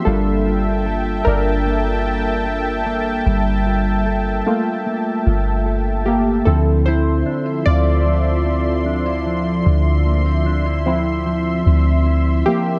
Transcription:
<<
  \new Staff \with { instrumentName = "Analog synth pad" } { \time 4/4 \key d \minor \tempo 4 = 75 << { <g'' a''>1~ | <g'' a''>1 | <f c'''>1~ | <f c'''>1 | } \\ { e''1~ | e''1 | e''1 | e''1 | } >> }
  \new Staff \with { instrumentName = "Synth keys" } { \time 4/4 \key d \minor << { <d' a'>4. <d' bes'>2 r8 | r2. r8 <bes g'>8 | <c' a'>8 <e' c''>4 <f' d''>4. r4 | r2. r8 <bes g'>8 | } \\ { <g bes f'>1 | r4. <a bes f'>8 r2 | <f c' e'>4. r2 r8 | r4. <f c' e'>4. r4 | } >> }
  \new Staff \with { instrumentName = "Clean electric guitar" } { \time 4/4 \key d \minor g8 f'8 a'8 f'8 bes8 f'8 a'8 bes8 | g8 f'8 a'8 f'8 bes8 f'8 a'8 bes8 | d8 c'8 d'16 e'16 c'8 f8 c'8 d'16 e'16 f8 | d8 bes16 c'16 d'16 e'16 c'8 f8 c'8 e'8 f8 | }
  \new Staff \with { instrumentName = "808-style bass" } { \clef bass \time 4/4 \key d \minor g,,4. g,,2~ g,,8 | g,,4. r4 g,,4. | d,4 r8 d,2~ d,8 | d,2~ d,8 d,4 r8 | }
>>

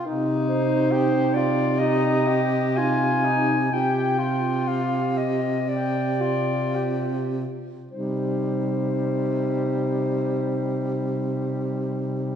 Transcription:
<<
  \new Staff \with { instrumentName = "Clarinet" } { \time 4/4 \key c \minor \tempo 4 = 57 r8 c''4 d''8 ees''4 aes''4 | g''4 f''8 ees''8 d''4. r8 | c''1 | }
  \new Staff \with { instrumentName = "Alto saxophone" } { \time 4/4 \key c \minor ees'2 g'4 ees'4 | f'4 g'4 g'4 f'8 r8 | ees'1 | }
  \new Staff \with { instrumentName = "Tenor saxophone" } { \time 4/4 \key c \minor ees'4 g'8 f'8 ees'8 g'8 f'8 ees'8 | g'8 f'4 r8 g'8 f'8 g'8 r8 | g1 | }
  \new Staff \with { instrumentName = "Baritone saxophone" } { \clef bass \time 4/4 \key c \minor c1 | c2.~ c8 r8 | c1 | }
>>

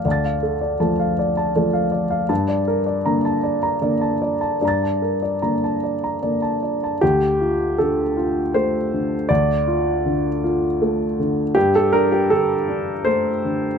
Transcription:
<<
  \new Staff \with { instrumentName = "Upright piano" } { \time 3/4 \key d \minor \tempo 4 = 79 << { <f'' a'' a'''>2. | r2. | <bes'' a'''>2. | g'4 a'4 c''4 |
d''2~ d''8 r8 | g'16 a'16 bes'16 g'16 a'4 c''4 | } \\ { d''16 f''16 a'16 d''16 a''16 f''16 d''16 a''16 d''16 f''16 d''16 f''16 | a''16 d''16 bes'16 d''16 bes''16 a''16 d''16 bes''16 d''16 a''16 d''16 a''16 | d''16 a''16 bes'16 d''16 bes''16 a''16 d''16 bes''16 d''16 a''16 d''16 a''16 | r2. |
r2. | r2. | } >> }
  \new Staff \with { instrumentName = "Upright piano" } { \clef bass \time 3/4 \key d \minor d,4 <f a>4 <f a>4 | g,4 <d bes>4 <d bes>4 | g,4 <d bes>4 <d bes>4 | d,8 f'8 d8 f'8 a8 d8 |
d,8 f'8 d8 f'8 a8 d8 | g,8 d'8 d8 d'8 a8 d8 | }
>>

